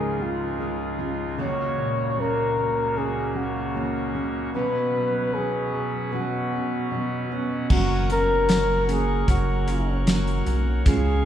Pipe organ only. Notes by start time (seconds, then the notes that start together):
Already playing: C#2 C#3 G#3 F4 G#4
1.37 A#3 F#4 C#5
4.55 B2 F#3 C#4 B4 F#5
7.70 A#4 C#5 F#5 C#6
10.85 G#4 F5